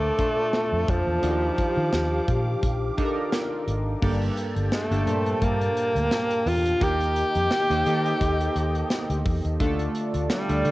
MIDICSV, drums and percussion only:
0, 0, Header, 1, 2, 480
1, 0, Start_track
1, 0, Tempo, 697674
1, 848, Time_signature, 4, 2, 24, 8
1, 7370, End_track
2, 0, Start_track
2, 0, Title_t, "Drums"
2, 127, Note_on_c, 9, 42, 70
2, 129, Note_on_c, 9, 36, 76
2, 196, Note_off_c, 9, 42, 0
2, 198, Note_off_c, 9, 36, 0
2, 366, Note_on_c, 9, 38, 99
2, 367, Note_on_c, 9, 42, 82
2, 435, Note_off_c, 9, 38, 0
2, 436, Note_off_c, 9, 42, 0
2, 608, Note_on_c, 9, 42, 59
2, 609, Note_on_c, 9, 36, 95
2, 677, Note_off_c, 9, 42, 0
2, 678, Note_off_c, 9, 36, 0
2, 846, Note_on_c, 9, 42, 83
2, 915, Note_off_c, 9, 42, 0
2, 1087, Note_on_c, 9, 42, 72
2, 1089, Note_on_c, 9, 36, 77
2, 1156, Note_off_c, 9, 42, 0
2, 1158, Note_off_c, 9, 36, 0
2, 1326, Note_on_c, 9, 38, 98
2, 1327, Note_on_c, 9, 42, 69
2, 1395, Note_off_c, 9, 38, 0
2, 1396, Note_off_c, 9, 42, 0
2, 1569, Note_on_c, 9, 42, 60
2, 1570, Note_on_c, 9, 36, 86
2, 1638, Note_off_c, 9, 42, 0
2, 1639, Note_off_c, 9, 36, 0
2, 1809, Note_on_c, 9, 36, 84
2, 1809, Note_on_c, 9, 42, 79
2, 1877, Note_off_c, 9, 36, 0
2, 1878, Note_off_c, 9, 42, 0
2, 2049, Note_on_c, 9, 42, 69
2, 2050, Note_on_c, 9, 36, 77
2, 2117, Note_off_c, 9, 42, 0
2, 2119, Note_off_c, 9, 36, 0
2, 2286, Note_on_c, 9, 38, 99
2, 2288, Note_on_c, 9, 42, 83
2, 2355, Note_off_c, 9, 38, 0
2, 2356, Note_off_c, 9, 42, 0
2, 2530, Note_on_c, 9, 42, 59
2, 2599, Note_off_c, 9, 42, 0
2, 2767, Note_on_c, 9, 49, 86
2, 2768, Note_on_c, 9, 36, 110
2, 2836, Note_off_c, 9, 49, 0
2, 2837, Note_off_c, 9, 36, 0
2, 2899, Note_on_c, 9, 42, 52
2, 2968, Note_off_c, 9, 42, 0
2, 3008, Note_on_c, 9, 42, 68
2, 3076, Note_off_c, 9, 42, 0
2, 3140, Note_on_c, 9, 42, 54
2, 3209, Note_off_c, 9, 42, 0
2, 3247, Note_on_c, 9, 38, 102
2, 3248, Note_on_c, 9, 42, 72
2, 3316, Note_off_c, 9, 38, 0
2, 3317, Note_off_c, 9, 42, 0
2, 3382, Note_on_c, 9, 42, 53
2, 3451, Note_off_c, 9, 42, 0
2, 3488, Note_on_c, 9, 42, 63
2, 3557, Note_off_c, 9, 42, 0
2, 3621, Note_on_c, 9, 42, 43
2, 3689, Note_off_c, 9, 42, 0
2, 3727, Note_on_c, 9, 42, 81
2, 3728, Note_on_c, 9, 36, 84
2, 3796, Note_off_c, 9, 42, 0
2, 3797, Note_off_c, 9, 36, 0
2, 3861, Note_on_c, 9, 42, 45
2, 3930, Note_off_c, 9, 42, 0
2, 3969, Note_on_c, 9, 42, 68
2, 4037, Note_off_c, 9, 42, 0
2, 4101, Note_on_c, 9, 42, 41
2, 4170, Note_off_c, 9, 42, 0
2, 4205, Note_on_c, 9, 38, 105
2, 4207, Note_on_c, 9, 42, 83
2, 4274, Note_off_c, 9, 38, 0
2, 4275, Note_off_c, 9, 42, 0
2, 4338, Note_on_c, 9, 42, 54
2, 4407, Note_off_c, 9, 42, 0
2, 4447, Note_on_c, 9, 46, 66
2, 4516, Note_off_c, 9, 46, 0
2, 4579, Note_on_c, 9, 42, 51
2, 4647, Note_off_c, 9, 42, 0
2, 4687, Note_on_c, 9, 36, 112
2, 4687, Note_on_c, 9, 42, 90
2, 4756, Note_off_c, 9, 36, 0
2, 4756, Note_off_c, 9, 42, 0
2, 4819, Note_on_c, 9, 42, 51
2, 4888, Note_off_c, 9, 42, 0
2, 4926, Note_on_c, 9, 42, 68
2, 4995, Note_off_c, 9, 42, 0
2, 5058, Note_on_c, 9, 42, 53
2, 5127, Note_off_c, 9, 42, 0
2, 5165, Note_on_c, 9, 38, 112
2, 5166, Note_on_c, 9, 42, 72
2, 5234, Note_off_c, 9, 38, 0
2, 5235, Note_off_c, 9, 42, 0
2, 5301, Note_on_c, 9, 42, 55
2, 5370, Note_off_c, 9, 42, 0
2, 5409, Note_on_c, 9, 42, 61
2, 5478, Note_off_c, 9, 42, 0
2, 5542, Note_on_c, 9, 42, 45
2, 5611, Note_off_c, 9, 42, 0
2, 5648, Note_on_c, 9, 36, 83
2, 5648, Note_on_c, 9, 42, 90
2, 5716, Note_off_c, 9, 36, 0
2, 5717, Note_off_c, 9, 42, 0
2, 5783, Note_on_c, 9, 42, 45
2, 5852, Note_off_c, 9, 42, 0
2, 5888, Note_on_c, 9, 42, 70
2, 5957, Note_off_c, 9, 42, 0
2, 6020, Note_on_c, 9, 42, 42
2, 6088, Note_off_c, 9, 42, 0
2, 6125, Note_on_c, 9, 38, 102
2, 6126, Note_on_c, 9, 42, 80
2, 6194, Note_off_c, 9, 38, 0
2, 6195, Note_off_c, 9, 42, 0
2, 6260, Note_on_c, 9, 42, 55
2, 6329, Note_off_c, 9, 42, 0
2, 6368, Note_on_c, 9, 36, 98
2, 6368, Note_on_c, 9, 46, 61
2, 6437, Note_off_c, 9, 36, 0
2, 6437, Note_off_c, 9, 46, 0
2, 6499, Note_on_c, 9, 42, 52
2, 6568, Note_off_c, 9, 42, 0
2, 6606, Note_on_c, 9, 42, 85
2, 6607, Note_on_c, 9, 36, 107
2, 6675, Note_off_c, 9, 36, 0
2, 6675, Note_off_c, 9, 42, 0
2, 6738, Note_on_c, 9, 42, 48
2, 6807, Note_off_c, 9, 42, 0
2, 6845, Note_on_c, 9, 42, 76
2, 6913, Note_off_c, 9, 42, 0
2, 6977, Note_on_c, 9, 42, 51
2, 7046, Note_off_c, 9, 42, 0
2, 7085, Note_on_c, 9, 38, 105
2, 7086, Note_on_c, 9, 42, 77
2, 7154, Note_off_c, 9, 38, 0
2, 7155, Note_off_c, 9, 42, 0
2, 7219, Note_on_c, 9, 42, 55
2, 7288, Note_off_c, 9, 42, 0
2, 7326, Note_on_c, 9, 42, 61
2, 7370, Note_off_c, 9, 42, 0
2, 7370, End_track
0, 0, End_of_file